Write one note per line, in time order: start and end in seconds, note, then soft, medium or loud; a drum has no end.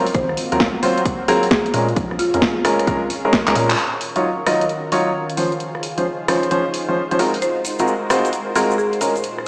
0.00 1.72 A#3 medium
0.00 3.75 C4 medium
0.00 1.70 F4 medium
0.00 1.72 F#4 medium
0.06 open hi-hat medium
0.14 0.26 G#1 loud
0.14 0.31 C5 medium
0.14 kick loud
0.14 closed hi-hat medium
0.29 0.36 G#1 medium
0.29 cross-stick soft
0.37 open hi-hat loud
0.52 0.58 D#2 loud
0.52 0.64 F#3 medium
0.52 0.64 C4 medium
0.52 0.64 F4 medium
0.52 0.64 A#4 medium
0.52 closed hi-hat medium
0.60 kick loud
0.60 snare loud
0.83 1.00 F#3 medium
0.83 1.00 C4 medium
0.83 1.00 F4 medium
0.83 1.00 C5 medium
0.83 open hi-hat loud
0.98 closed hi-hat medium
1.05 kick loud
1.05 closed hi-hat medium
1.28 1.45 F#3 loud
1.28 1.45 C4 medium
1.28 1.45 F4 medium
1.28 1.40 G#4 medium
1.28 1.45 A#4 loud
1.28 open hi-hat loud
1.43 open hi-hat medium
1.51 1.67 G#4 medium
1.51 kick loud
1.51 snare loud
1.66 closed hi-hat medium
1.73 1.93 A#2 medium
1.73 1.85 G#3 medium
1.73 3.76 C#4 medium
1.73 1.85 C#4 medium
1.73 3.76 F4 medium
1.73 3.76 G#4 medium
1.73 1.85 A#4 medium
1.73 open hi-hat loud
1.88 closed hi-hat soft
1.96 2.08 A#1 loud
1.96 kick loud
1.96 closed hi-hat medium
2.11 2.17 A#1 medium
2.11 cross-stick soft
2.19 2.29 F4 medium
2.19 open hi-hat loud
2.34 2.40 F2 loud
2.34 2.40 G#3 medium
2.34 2.40 C#4 medium
2.34 2.39 F4 medium
2.34 2.40 A#4 medium
2.34 closed hi-hat medium
2.42 kick loud
2.42 snare loud
2.65 2.86 G#3 medium
2.65 2.86 C#4 medium
2.65 2.86 A#4 medium
2.65 cross-stick medium
2.65 open hi-hat loud
2.79 cross-stick soft
2.79 closed hi-hat medium
2.87 2.99 G#3 medium
2.87 2.99 C#4 medium
2.87 2.99 A#4 medium
2.87 kick loud
2.87 closed hi-hat medium
3.10 open hi-hat loud
3.25 3.36 G#3 medium
3.25 3.36 C#4 medium
3.25 3.36 A#4 medium
3.33 kick loud
3.33 snare loud
3.47 3.54 C#2 medium
3.47 3.54 G#3 medium
3.47 3.54 C#4 medium
3.47 3.54 A#4 medium
3.47 clap medium
3.47 closed hi-hat medium
3.55 3.75 A#2 loud
3.55 3.67 G#3 medium
3.55 3.67 C#4 medium
3.55 3.67 A#4 medium
3.55 open hi-hat loud
3.70 clap medium
3.70 open hi-hat medium
3.78 5.36 D#3 medium
3.78 5.36 C#4 medium
3.78 9.48 F4 medium
3.78 5.36 F#4 medium
3.78 5.36 A#4 loud
3.78 closed hi-hat medium
4.01 open hi-hat loud
4.16 4.27 F#3 medium
4.16 4.27 D#4 medium
4.16 4.27 F4 medium
4.16 4.27 C#5 medium
4.16 closed hi-hat medium
4.46 4.63 F#3 medium
4.46 4.63 D#4 medium
4.46 4.63 F4 medium
4.46 4.63 D#5 medium
4.46 cross-stick medium
4.46 open hi-hat loud
4.61 closed hi-hat medium
4.69 closed hi-hat medium
4.92 5.09 F#3 medium
4.92 5.09 D#4 medium
4.92 5.09 F4 medium
4.92 5.09 C#5 medium
4.92 open hi-hat medium
5.30 closed hi-hat soft
5.37 7.17 C#3 medium
5.37 5.49 F3 medium
5.37 5.49 C#4 medium
5.37 8.98 D#4 medium
5.37 7.18 G#4 medium
5.37 5.49 C5 medium
5.37 9.48 C5 medium
5.37 open hi-hat loud
5.52 closed hi-hat soft
5.60 closed hi-hat medium
5.75 cross-stick soft
5.83 open hi-hat loud
5.98 6.04 F3 medium
5.98 6.04 C#4 medium
5.98 6.04 C5 medium
5.98 closed hi-hat medium
6.28 6.49 F3 medium
6.28 6.49 C#4 medium
6.28 6.49 C5 medium
6.28 cross-stick medium
6.28 open hi-hat loud
6.43 closed hi-hat medium
6.51 6.63 F3 medium
6.51 6.63 C#4 medium
6.51 6.62 C5 medium
6.51 closed hi-hat medium
6.74 open hi-hat medium
6.89 7.00 F3 medium
6.89 7.00 C#4 medium
6.89 7.00 C5 medium
7.11 7.18 F3 medium
7.11 7.18 C#4 medium
7.11 7.18 C5 medium
7.11 closed hi-hat soft
7.19 7.31 G#3 medium
7.19 8.99 G#3 medium
7.19 7.31 C4 medium
7.19 7.31 F4 medium
7.19 7.31 F#4 medium
7.19 8.99 F#4 medium
7.19 7.31 A#4 medium
7.19 8.99 A#4 medium
7.19 open hi-hat loud
7.34 open hi-hat medium
7.42 7.58 C5 medium
7.42 closed hi-hat medium
7.42 shaker soft
7.65 open hi-hat medium
7.65 shaker medium
7.79 7.91 G#3 medium
7.79 7.91 C4 medium
7.79 7.91 F4 medium
7.79 7.91 F#4 medium
7.79 7.91 A#4 medium
7.79 closed hi-hat medium
7.79 shaker medium
7.88 shaker soft
8.10 8.27 G#3 medium
8.10 8.27 C4 medium
8.10 8.27 F4 medium
8.10 8.27 F#4 medium
8.10 8.27 C5 medium
8.10 cross-stick medium
8.10 open hi-hat loud
8.10 shaker loud
8.25 closed hi-hat medium
8.25 shaker medium
8.33 closed hi-hat medium
8.33 shaker soft
8.55 8.72 G#3 medium
8.55 8.72 C4 medium
8.55 8.72 F4 medium
8.55 8.72 F#4 medium
8.55 8.67 G#4 medium
8.55 8.72 A#4 loud
8.55 open hi-hat medium
8.55 shaker medium
8.71 shaker soft
8.78 8.95 G#4 medium
8.78 shaker soft
8.93 closed hi-hat soft
9.01 9.48 A#2 medium
9.01 9.13 G#3 medium
9.01 9.48 C#4 medium
9.01 9.13 C#4 medium
9.01 9.48 G#4 medium
9.01 9.13 A#4 medium
9.01 open hi-hat medium
9.01 shaker loud
9.16 closed hi-hat soft
9.16 shaker soft
9.23 closed hi-hat medium
9.23 shaker soft
9.38 cross-stick soft